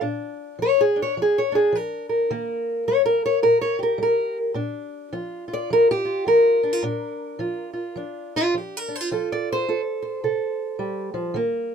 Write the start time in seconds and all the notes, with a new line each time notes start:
0.01 A#2 D4
0.59 F3 C#5
0.81 G#4
0.96 D4
1.02 C#5
1.17 F3
1.22 G#4
1.38 C#5
1.52 D4 G#4
1.72 F3 A#4
2.09 A#4
2.31 D#3 A#3
2.88 G3 C#5
3.06 A#4
3.26 C#5
3.42 A#2 A#4
3.61 C#5
3.79 G4 A#4
3.98 G3
4.03 A#4
4.54 A#2 D4
5.13 F3 F4
5.48 F4
5.53 D5
5.70 F3 A#4
5.91 G4
6.05 F4
6.26 F3 A#4
6.63 D4
6.73 F4
6.83 A#2 D4
7.39 F3 F4
7.73 F4
7.96 F3 D4
8.36 F4
8.54 F3 G4
8.77 A#4
8.88 D4
8.96 C5
9.01 F4
9.11 F3 F4 A4
9.32 D5
9.52 C5
9.68 F4 A4
10.02 C5
10.24 C3 A4
10.79 G3
11.14 F3
11.34 D#3 A#3